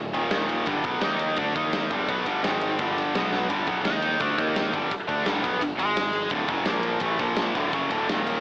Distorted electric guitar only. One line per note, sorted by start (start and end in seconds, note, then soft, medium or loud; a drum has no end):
0.00 0.11 D2 medium
0.00 0.11 A2 medium
0.13 0.67 D#2 medium
0.13 0.67 A#2 medium
0.13 0.67 D#3 medium
0.67 0.84 G2 medium
0.67 0.85 D3 loud
0.67 0.85 G3 loud
0.85 1.02 B2 medium
0.85 1.03 F#3 medium
0.85 1.03 B3 loud
1.03 1.37 D#3 medium
1.03 1.38 A#3 medium
1.03 1.38 D#4 loud
1.38 1.55 D3 medium
1.38 1.56 A3 medium
1.38 1.56 D4 loud
1.55 1.91 D#3 medium
1.55 1.91 A#3 loud
1.55 1.91 D#4 medium
1.91 2.08 G2 medium
1.91 2.08 D3 medium
1.91 2.09 G3 medium
2.08 2.26 B2 medium
2.08 2.26 F#3 medium
2.08 2.26 B3 loud
2.26 2.42 G2 medium
2.26 2.43 D3 medium
2.26 2.44 G3 medium
2.43 2.78 G#2 loud
2.43 2.79 D#3 medium
2.43 2.79 G#3 medium
2.79 3.14 G2 medium
2.79 3.14 D3 medium
2.79 3.15 G3 medium
3.15 3.49 B2 medium
3.15 3.50 F#3 medium
3.15 3.50 B3 medium
3.49 3.67 G2 medium
3.49 3.67 D3 loud
3.49 3.67 G3 medium
3.67 3.85 B2 medium
3.67 3.84 F#3 medium
3.67 3.85 B3 medium
3.84 4.20 D#3 medium
3.84 4.20 A#3 medium
3.84 4.20 D#4 loud
4.20 4.39 D3 medium
4.20 4.39 A3 medium
4.20 4.40 D4 medium
4.39 4.73 D#3 medium
4.39 4.74 A#3 loud
4.39 4.74 D#4 medium
4.73 4.90 G2 medium
4.73 4.91 D3 medium
4.73 4.91 G3 medium
4.91 muted distorted electric guitar stroke medium
5.08 5.25 D3 medium
5.08 5.26 A3 medium
5.08 5.26 D4 loud
5.25 5.42 G2 medium
5.25 5.43 D3 loud
5.25 5.43 G3 loud
5.42 5.60 B2 medium
5.42 5.60 F#3 loud
5.42 5.61 B3 medium
5.60 5.78 G2 medium
5.60 5.78 D3 medium
5.78 6.30 G#2 medium
5.78 6.31 D#3 medium
5.78 6.31 G#3 medium
6.31 6.48 D2 medium
6.31 6.49 A2 loud
6.31 6.49 D3 medium
6.48 6.65 F#2 medium
6.48 6.66 C#3 medium
6.48 6.67 F#3 medium
6.66 7.00 A#2 loud
6.66 7.01 F3 medium
6.66 7.02 A#3 medium
7.01 7.19 A2 medium
7.01 7.19 E3 medium
7.01 7.20 A3 medium
7.20 7.55 A#2 medium
7.20 7.55 F3 medium
7.20 7.55 A#3 medium
7.56 7.72 D2 medium
7.56 7.73 A2 medium
7.56 7.73 D3 medium
7.73 7.90 F#2 medium
7.73 7.90 C#3 loud
7.73 7.91 F#3 loud
7.91 8.08 D2 medium
7.91 8.08 A2 medium
7.91 8.08 D3 loud
8.09 8.40 D#2 medium
8.09 8.40 A#2 medium
8.09 8.40 D#3 loud